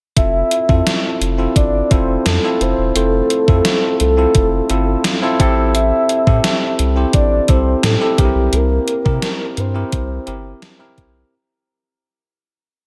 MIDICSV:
0, 0, Header, 1, 5, 480
1, 0, Start_track
1, 0, Key_signature, -1, "major"
1, 0, Tempo, 697674
1, 113, Time_signature, 4, 2, 24, 8
1, 8853, End_track
2, 0, Start_track
2, 0, Title_t, "Soft synth lead"
2, 0, Program_c, 0, 80
2, 117, Note_on_c, 0, 76, 115
2, 807, Note_off_c, 0, 76, 0
2, 1075, Note_on_c, 0, 74, 99
2, 1314, Note_on_c, 0, 72, 98
2, 1325, Note_off_c, 0, 74, 0
2, 1557, Note_on_c, 0, 69, 89
2, 1567, Note_off_c, 0, 72, 0
2, 1800, Note_on_c, 0, 72, 94
2, 1810, Note_off_c, 0, 69, 0
2, 2032, Note_off_c, 0, 72, 0
2, 2036, Note_on_c, 0, 69, 101
2, 2727, Note_off_c, 0, 69, 0
2, 2759, Note_on_c, 0, 69, 81
2, 3448, Note_off_c, 0, 69, 0
2, 3952, Note_on_c, 0, 76, 115
2, 4645, Note_off_c, 0, 76, 0
2, 4911, Note_on_c, 0, 74, 108
2, 5154, Note_on_c, 0, 72, 99
2, 5165, Note_off_c, 0, 74, 0
2, 5394, Note_on_c, 0, 69, 94
2, 5404, Note_off_c, 0, 72, 0
2, 5633, Note_on_c, 0, 67, 88
2, 5643, Note_off_c, 0, 69, 0
2, 5878, Note_on_c, 0, 70, 108
2, 5888, Note_off_c, 0, 67, 0
2, 6606, Note_on_c, 0, 72, 86
2, 6616, Note_off_c, 0, 70, 0
2, 7319, Note_off_c, 0, 72, 0
2, 8853, End_track
3, 0, Start_track
3, 0, Title_t, "Tine electric piano"
3, 0, Program_c, 1, 4
3, 113, Note_on_c, 1, 60, 61
3, 117, Note_on_c, 1, 64, 55
3, 118, Note_on_c, 1, 65, 56
3, 121, Note_on_c, 1, 69, 73
3, 259, Control_c, 1, 64, 127
3, 388, Note_off_c, 1, 60, 0
3, 390, Note_off_c, 1, 64, 0
3, 390, Note_off_c, 1, 65, 0
3, 392, Note_off_c, 1, 69, 0
3, 473, Note_on_c, 1, 60, 64
3, 476, Note_on_c, 1, 64, 56
3, 477, Note_on_c, 1, 65, 59
3, 479, Note_on_c, 1, 69, 71
3, 839, Note_off_c, 1, 60, 0
3, 841, Note_off_c, 1, 64, 0
3, 842, Note_off_c, 1, 65, 0
3, 842, Note_off_c, 1, 69, 0
3, 949, Note_on_c, 1, 60, 63
3, 951, Note_on_c, 1, 64, 60
3, 955, Note_on_c, 1, 65, 58
3, 958, Note_on_c, 1, 69, 65
3, 1226, Note_off_c, 1, 60, 0
3, 1227, Note_off_c, 1, 64, 0
3, 1229, Note_off_c, 1, 65, 0
3, 1230, Note_off_c, 1, 69, 0
3, 1311, Note_on_c, 1, 60, 67
3, 1316, Note_on_c, 1, 64, 62
3, 1318, Note_on_c, 1, 65, 61
3, 1320, Note_on_c, 1, 69, 73
3, 1587, Note_off_c, 1, 60, 0
3, 1589, Note_off_c, 1, 64, 0
3, 1590, Note_off_c, 1, 65, 0
3, 1591, Note_off_c, 1, 69, 0
3, 1677, Note_on_c, 1, 60, 70
3, 1679, Note_on_c, 1, 64, 67
3, 1681, Note_on_c, 1, 65, 67
3, 1684, Note_on_c, 1, 69, 75
3, 1950, Note_off_c, 1, 60, 0
3, 1951, Note_off_c, 1, 64, 0
3, 1952, Note_off_c, 1, 65, 0
3, 1953, Note_off_c, 1, 69, 0
3, 2035, Note_on_c, 1, 60, 61
3, 2037, Note_on_c, 1, 64, 59
3, 2041, Note_on_c, 1, 65, 59
3, 2042, Note_on_c, 1, 72, 72
3, 2309, Note_off_c, 1, 60, 0
3, 2310, Note_off_c, 1, 64, 0
3, 2312, Note_off_c, 1, 65, 0
3, 2313, Note_off_c, 1, 72, 0
3, 2395, Note_on_c, 1, 60, 62
3, 2397, Note_on_c, 1, 64, 58
3, 2400, Note_on_c, 1, 65, 64
3, 2403, Note_on_c, 1, 69, 75
3, 2760, Note_off_c, 1, 60, 0
3, 2762, Note_off_c, 1, 64, 0
3, 2763, Note_off_c, 1, 65, 0
3, 2764, Note_off_c, 1, 69, 0
3, 2870, Note_on_c, 1, 60, 64
3, 2875, Note_on_c, 1, 64, 62
3, 2877, Note_on_c, 1, 65, 60
3, 2880, Note_on_c, 1, 69, 72
3, 3146, Note_off_c, 1, 60, 0
3, 3149, Note_off_c, 1, 64, 0
3, 3150, Note_off_c, 1, 65, 0
3, 3151, Note_off_c, 1, 69, 0
3, 3229, Note_on_c, 1, 60, 68
3, 3231, Note_on_c, 1, 64, 61
3, 3234, Note_on_c, 1, 65, 64
3, 3236, Note_on_c, 1, 69, 78
3, 3506, Note_off_c, 1, 60, 0
3, 3507, Note_off_c, 1, 64, 0
3, 3508, Note_off_c, 1, 65, 0
3, 3509, Note_off_c, 1, 69, 0
3, 3592, Note_on_c, 1, 60, 89
3, 3594, Note_on_c, 1, 64, 82
3, 3599, Note_on_c, 1, 65, 80
3, 3601, Note_on_c, 1, 69, 100
3, 3704, Note_off_c, 1, 60, 0
3, 3706, Note_off_c, 1, 64, 0
3, 3712, Note_on_c, 1, 60, 89
3, 3713, Note_off_c, 1, 69, 0
3, 3714, Note_on_c, 1, 64, 80
3, 3716, Note_off_c, 1, 65, 0
3, 3718, Note_on_c, 1, 67, 76
3, 3721, Control_c, 1, 64, 0
3, 3721, Note_on_c, 1, 69, 93
3, 3832, Control_c, 1, 64, 127
3, 4192, Note_off_c, 1, 60, 0
3, 4193, Note_off_c, 1, 64, 0
3, 4195, Note_off_c, 1, 67, 0
3, 4197, Note_off_c, 1, 69, 0
3, 4311, Note_on_c, 1, 60, 68
3, 4316, Note_on_c, 1, 64, 59
3, 4319, Note_on_c, 1, 67, 63
3, 4321, Note_on_c, 1, 69, 73
3, 4679, Note_off_c, 1, 60, 0
3, 4681, Note_off_c, 1, 64, 0
3, 4682, Note_off_c, 1, 67, 0
3, 4683, Note_off_c, 1, 69, 0
3, 4788, Note_on_c, 1, 60, 65
3, 4791, Note_on_c, 1, 64, 59
3, 4796, Note_on_c, 1, 67, 58
3, 4797, Note_on_c, 1, 72, 69
3, 5065, Note_off_c, 1, 60, 0
3, 5067, Note_off_c, 1, 64, 0
3, 5069, Note_off_c, 1, 67, 0
3, 5070, Note_off_c, 1, 72, 0
3, 5148, Note_on_c, 1, 60, 69
3, 5150, Note_on_c, 1, 64, 62
3, 5155, Note_on_c, 1, 67, 62
3, 5157, Note_on_c, 1, 69, 71
3, 5425, Note_off_c, 1, 60, 0
3, 5426, Note_off_c, 1, 64, 0
3, 5429, Note_off_c, 1, 67, 0
3, 5430, Note_off_c, 1, 69, 0
3, 5507, Note_on_c, 1, 60, 73
3, 5510, Note_on_c, 1, 64, 66
3, 5513, Note_on_c, 1, 67, 63
3, 5516, Note_on_c, 1, 69, 82
3, 5620, Note_off_c, 1, 60, 0
3, 5625, Note_off_c, 1, 67, 0
3, 5628, Note_on_c, 1, 60, 69
3, 5631, Note_off_c, 1, 64, 0
3, 5633, Note_on_c, 1, 62, 50
3, 5633, Note_on_c, 1, 67, 64
3, 5634, Note_off_c, 1, 69, 0
3, 5639, Note_on_c, 1, 70, 79
3, 5641, Control_c, 1, 64, 0
3, 5675, Note_on_c, 1, 64, 66
3, 5677, Note_off_c, 1, 62, 0
3, 5743, Control_c, 1, 64, 127
3, 6111, Note_off_c, 1, 60, 0
3, 6113, Note_off_c, 1, 67, 0
3, 6116, Note_off_c, 1, 70, 0
3, 6134, Note_off_c, 1, 64, 0
3, 6226, Note_on_c, 1, 60, 65
3, 6228, Note_on_c, 1, 64, 59
3, 6231, Note_on_c, 1, 67, 62
3, 6234, Note_on_c, 1, 70, 72
3, 6596, Note_off_c, 1, 60, 0
3, 6597, Note_off_c, 1, 64, 0
3, 6598, Note_off_c, 1, 67, 0
3, 6600, Note_off_c, 1, 70, 0
3, 6705, Note_on_c, 1, 60, 65
3, 6708, Note_on_c, 1, 64, 60
3, 6711, Note_on_c, 1, 67, 59
3, 6712, Note_on_c, 1, 70, 72
3, 6984, Note_off_c, 1, 60, 0
3, 6985, Note_off_c, 1, 64, 0
3, 6987, Note_off_c, 1, 67, 0
3, 6987, Note_off_c, 1, 70, 0
3, 7063, Note_on_c, 1, 60, 68
3, 7064, Note_on_c, 1, 64, 60
3, 7068, Note_on_c, 1, 67, 61
3, 7072, Note_on_c, 1, 70, 72
3, 7343, Note_off_c, 1, 60, 0
3, 7344, Note_off_c, 1, 64, 0
3, 7345, Note_off_c, 1, 67, 0
3, 7347, Note_off_c, 1, 70, 0
3, 7424, Note_on_c, 1, 60, 80
3, 7425, Note_on_c, 1, 64, 79
3, 7429, Note_on_c, 1, 67, 76
3, 7431, Note_on_c, 1, 70, 93
3, 7703, Note_off_c, 1, 60, 0
3, 7704, Note_off_c, 1, 64, 0
3, 7706, Note_off_c, 1, 67, 0
3, 7707, Note_off_c, 1, 70, 0
3, 7803, Control_c, 1, 64, 0
3, 8853, End_track
4, 0, Start_track
4, 0, Title_t, "Analog synth bass"
4, 0, Program_c, 2, 38
4, 114, Note_on_c, 2, 29, 99
4, 294, Note_off_c, 2, 29, 0
4, 475, Note_on_c, 2, 41, 89
4, 564, Note_off_c, 2, 41, 0
4, 832, Note_on_c, 2, 29, 79
4, 1012, Note_off_c, 2, 29, 0
4, 1071, Note_on_c, 2, 31, 84
4, 1252, Note_off_c, 2, 31, 0
4, 1315, Note_on_c, 2, 29, 81
4, 1494, Note_off_c, 2, 29, 0
4, 1553, Note_on_c, 2, 41, 94
4, 1643, Note_off_c, 2, 41, 0
4, 1794, Note_on_c, 2, 29, 89
4, 1883, Note_off_c, 2, 29, 0
4, 1914, Note_on_c, 2, 28, 83
4, 2004, Note_off_c, 2, 28, 0
4, 2031, Note_on_c, 2, 29, 102
4, 2212, Note_off_c, 2, 29, 0
4, 2395, Note_on_c, 2, 41, 88
4, 2484, Note_off_c, 2, 41, 0
4, 2755, Note_on_c, 2, 36, 80
4, 2934, Note_off_c, 2, 36, 0
4, 2993, Note_on_c, 2, 29, 97
4, 3173, Note_off_c, 2, 29, 0
4, 3232, Note_on_c, 2, 31, 87
4, 3412, Note_off_c, 2, 31, 0
4, 3713, Note_on_c, 2, 33, 100
4, 4073, Note_off_c, 2, 33, 0
4, 4313, Note_on_c, 2, 45, 87
4, 4403, Note_off_c, 2, 45, 0
4, 4673, Note_on_c, 2, 36, 88
4, 4853, Note_off_c, 2, 36, 0
4, 4910, Note_on_c, 2, 33, 83
4, 5091, Note_off_c, 2, 33, 0
4, 5151, Note_on_c, 2, 36, 85
4, 5331, Note_off_c, 2, 36, 0
4, 5390, Note_on_c, 2, 45, 95
4, 5481, Note_off_c, 2, 45, 0
4, 5631, Note_on_c, 2, 36, 97
4, 5722, Note_off_c, 2, 36, 0
4, 5746, Note_on_c, 2, 35, 89
4, 5839, Note_off_c, 2, 35, 0
4, 5866, Note_on_c, 2, 36, 114
4, 6049, Note_off_c, 2, 36, 0
4, 6231, Note_on_c, 2, 48, 99
4, 6322, Note_off_c, 2, 48, 0
4, 6587, Note_on_c, 2, 43, 86
4, 6769, Note_off_c, 2, 43, 0
4, 6830, Note_on_c, 2, 36, 96
4, 7011, Note_off_c, 2, 36, 0
4, 7068, Note_on_c, 2, 31, 86
4, 7250, Note_off_c, 2, 31, 0
4, 7553, Note_on_c, 2, 35, 92
4, 7733, Note_off_c, 2, 35, 0
4, 8853, End_track
5, 0, Start_track
5, 0, Title_t, "Drums"
5, 114, Note_on_c, 9, 36, 92
5, 115, Note_on_c, 9, 42, 81
5, 183, Note_off_c, 9, 36, 0
5, 184, Note_off_c, 9, 42, 0
5, 353, Note_on_c, 9, 42, 69
5, 422, Note_off_c, 9, 42, 0
5, 475, Note_on_c, 9, 36, 87
5, 544, Note_off_c, 9, 36, 0
5, 596, Note_on_c, 9, 38, 96
5, 597, Note_on_c, 9, 42, 76
5, 665, Note_off_c, 9, 38, 0
5, 665, Note_off_c, 9, 42, 0
5, 836, Note_on_c, 9, 42, 70
5, 905, Note_off_c, 9, 42, 0
5, 1073, Note_on_c, 9, 36, 84
5, 1075, Note_on_c, 9, 42, 74
5, 1141, Note_off_c, 9, 36, 0
5, 1144, Note_off_c, 9, 42, 0
5, 1313, Note_on_c, 9, 42, 60
5, 1314, Note_on_c, 9, 36, 84
5, 1382, Note_off_c, 9, 42, 0
5, 1383, Note_off_c, 9, 36, 0
5, 1553, Note_on_c, 9, 38, 99
5, 1556, Note_on_c, 9, 42, 80
5, 1622, Note_off_c, 9, 38, 0
5, 1624, Note_off_c, 9, 42, 0
5, 1796, Note_on_c, 9, 42, 63
5, 1865, Note_off_c, 9, 42, 0
5, 2033, Note_on_c, 9, 42, 88
5, 2102, Note_off_c, 9, 42, 0
5, 2272, Note_on_c, 9, 42, 70
5, 2341, Note_off_c, 9, 42, 0
5, 2394, Note_on_c, 9, 36, 90
5, 2463, Note_off_c, 9, 36, 0
5, 2510, Note_on_c, 9, 38, 93
5, 2511, Note_on_c, 9, 42, 77
5, 2579, Note_off_c, 9, 38, 0
5, 2580, Note_off_c, 9, 42, 0
5, 2751, Note_on_c, 9, 42, 70
5, 2820, Note_off_c, 9, 42, 0
5, 2990, Note_on_c, 9, 42, 82
5, 2992, Note_on_c, 9, 36, 84
5, 3059, Note_off_c, 9, 42, 0
5, 3061, Note_off_c, 9, 36, 0
5, 3230, Note_on_c, 9, 42, 60
5, 3299, Note_off_c, 9, 42, 0
5, 3469, Note_on_c, 9, 38, 96
5, 3472, Note_on_c, 9, 42, 81
5, 3538, Note_off_c, 9, 38, 0
5, 3541, Note_off_c, 9, 42, 0
5, 3713, Note_on_c, 9, 36, 85
5, 3714, Note_on_c, 9, 42, 66
5, 3782, Note_off_c, 9, 36, 0
5, 3783, Note_off_c, 9, 42, 0
5, 3954, Note_on_c, 9, 42, 87
5, 4023, Note_off_c, 9, 42, 0
5, 4192, Note_on_c, 9, 42, 70
5, 4261, Note_off_c, 9, 42, 0
5, 4314, Note_on_c, 9, 36, 97
5, 4383, Note_off_c, 9, 36, 0
5, 4431, Note_on_c, 9, 38, 99
5, 4431, Note_on_c, 9, 42, 76
5, 4499, Note_off_c, 9, 38, 0
5, 4500, Note_off_c, 9, 42, 0
5, 4671, Note_on_c, 9, 42, 69
5, 4740, Note_off_c, 9, 42, 0
5, 4908, Note_on_c, 9, 42, 78
5, 4910, Note_on_c, 9, 36, 82
5, 4976, Note_off_c, 9, 42, 0
5, 4979, Note_off_c, 9, 36, 0
5, 5147, Note_on_c, 9, 42, 60
5, 5151, Note_on_c, 9, 36, 84
5, 5216, Note_off_c, 9, 42, 0
5, 5220, Note_off_c, 9, 36, 0
5, 5389, Note_on_c, 9, 38, 100
5, 5392, Note_on_c, 9, 42, 82
5, 5458, Note_off_c, 9, 38, 0
5, 5460, Note_off_c, 9, 42, 0
5, 5630, Note_on_c, 9, 36, 89
5, 5630, Note_on_c, 9, 42, 66
5, 5699, Note_off_c, 9, 36, 0
5, 5699, Note_off_c, 9, 42, 0
5, 5867, Note_on_c, 9, 42, 90
5, 5936, Note_off_c, 9, 42, 0
5, 6107, Note_on_c, 9, 42, 72
5, 6175, Note_off_c, 9, 42, 0
5, 6231, Note_on_c, 9, 36, 93
5, 6300, Note_off_c, 9, 36, 0
5, 6346, Note_on_c, 9, 38, 92
5, 6346, Note_on_c, 9, 42, 80
5, 6415, Note_off_c, 9, 38, 0
5, 6415, Note_off_c, 9, 42, 0
5, 6586, Note_on_c, 9, 42, 72
5, 6654, Note_off_c, 9, 42, 0
5, 6828, Note_on_c, 9, 42, 82
5, 6829, Note_on_c, 9, 36, 83
5, 6897, Note_off_c, 9, 42, 0
5, 6898, Note_off_c, 9, 36, 0
5, 7065, Note_on_c, 9, 42, 58
5, 7134, Note_off_c, 9, 42, 0
5, 7308, Note_on_c, 9, 38, 101
5, 7311, Note_on_c, 9, 42, 82
5, 7377, Note_off_c, 9, 38, 0
5, 7379, Note_off_c, 9, 42, 0
5, 7552, Note_on_c, 9, 36, 77
5, 7553, Note_on_c, 9, 42, 61
5, 7621, Note_off_c, 9, 36, 0
5, 7622, Note_off_c, 9, 42, 0
5, 8853, End_track
0, 0, End_of_file